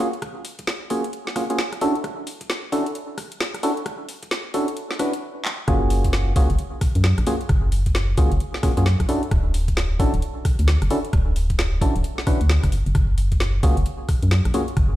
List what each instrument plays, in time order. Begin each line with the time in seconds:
0.13 closed hi-hat
0.22 kick, cross-stick, closed hi-hat
0.45 open hi-hat
0.59 kick, closed hi-hat
0.67 snare
0.90 synth stab A#3 C#4 F4 F#4 G#4, kick, open hi-hat
1.04 closed hi-hat
1.13 closed hi-hat
1.27 snare
1.36 synth stab A#3 C#4 F4 F#4 G#4, kick, cross-stick, open hi-hat
1.50 synth stab A#3 C#4 F4 F#4 G#4, closed hi-hat
1.59 snare
1.73 cross-stick, closed hi-hat
1.81 synth stab C#4 D4 E4 F#4 A4, open hi-hat
1.95 closed hi-hat
2.04 kick, cross-stick, closed hi-hat
2.27 open hi-hat
2.41 kick, closed hi-hat
2.50 snare
2.72 synth stab C#4 D4 E4 F#4 A4, kick, open hi-hat
2.86 closed hi-hat
2.95 closed hi-hat
3.18 kick, cross-stick, open hi-hat
3.32 closed hi-hat
3.40 snare
3.54 cross-stick, closed hi-hat
3.63 synth stab C#4 D4 E4 F#4 A4, open hi-hat
3.77 closed hi-hat
3.86 kick, cross-stick, closed hi-hat
4.09 open hi-hat
4.23 kick, closed hi-hat
4.31 snare
4.54 synth stab C#4 D4 E4 F#4 A4, kick, open hi-hat
4.68 closed hi-hat
4.77 closed hi-hat
4.91 snare
4.99 synth stab C#4 D4 E4 F#4 B4, kick, cross-stick, open hi-hat
5.13 closed hi-hat
5.45 clap
5.68 fm bass F#1, synth stab A#3 C#4 F4 F#4 G#4, kick, cross-stick, closed hi-hat
5.90 open hi-hat
6.04 kick, closed hi-hat
6.13 snare
6.36 fm bass C#2, synth stab A#3 C#4 F4 F#4 G#4, kick, open hi-hat
6.50 fm bass F#1, closed hi-hat
6.59 closed hi-hat
6.81 kick, cross-stick, open hi-hat
6.95 fm bass F#2, closed hi-hat
7.04 snare
7.18 fm bass A#1, cross-stick, closed hi-hat
7.27 synth stab A#3 C#4 F4 F#4 G#4, open hi-hat
7.41 closed hi-hat
7.49 fm bass F#1, kick, cross-stick, closed hi-hat
7.72 open hi-hat
7.86 kick, closed hi-hat
7.95 snare
8.18 fm bass C#2, synth stab A#3 C#4 F4 F#4 G#4, kick, open hi-hat
8.32 fm bass F#1, closed hi-hat
8.40 closed hi-hat
8.54 snare
8.63 synth stab A#3 C#4 F4 F#4 G#4, kick, cross-stick, open hi-hat
8.77 fm bass F#2, synth stab A#3 C#4 F4 F#4 G#4, closed hi-hat
8.86 snare
9.00 fm bass A#1, kick, cross-stick, closed hi-hat
9.09 synth stab C#4 D4 E4 F#4 A4, open hi-hat
9.23 closed hi-hat
9.31 fm bass D1, kick, cross-stick, closed hi-hat
9.54 open hi-hat
9.68 kick, closed hi-hat
9.77 snare
10.00 fm bass A1, synth stab C#4 D4 E4 F#4 A4, kick, open hi-hat
10.14 fm bass D1, closed hi-hat
10.22 closed hi-hat
10.45 kick, cross-stick, open hi-hat
10.59 fm bass D2, closed hi-hat
10.68 snare
10.82 fm bass F#1, cross-stick, closed hi-hat
10.90 synth stab C#4 D4 E4 F#4 A4, open hi-hat
11.05 closed hi-hat
11.13 fm bass D1, kick, cross-stick, closed hi-hat
11.36 open hi-hat
11.50 kick, closed hi-hat
11.59 snare
11.81 fm bass A1, synth stab C#4 D4 E4 F#4 A4, kick, open hi-hat
11.96 fm bass D1, closed hi-hat
12.04 closed hi-hat
12.18 snare
12.27 synth stab C#4 D4 E4 F#4 B4, kick, cross-stick, open hi-hat
12.41 fm bass D2, closed hi-hat
12.49 snare
12.64 fm bass F#1, kick, cross-stick, closed hi-hat
12.72 open hi-hat
12.86 fm bass F#1, closed hi-hat
12.95 fm bass F#1, kick, cross-stick, closed hi-hat
13.18 open hi-hat
13.32 kick, closed hi-hat
13.40 snare
13.63 fm bass C#2, synth stab A#3 C#4 F4 F#4 G#4, kick, open hi-hat
13.77 fm bass F#1, closed hi-hat
13.86 closed hi-hat
14.09 kick, cross-stick, open hi-hat
14.22 fm bass F#2, closed hi-hat
14.31 snare
14.45 fm bass A#1, cross-stick, closed hi-hat
14.54 synth stab A#3 C#4 F4 F#4 G#4, open hi-hat
14.68 closed hi-hat
14.77 fm bass F#1, kick, cross-stick, closed hi-hat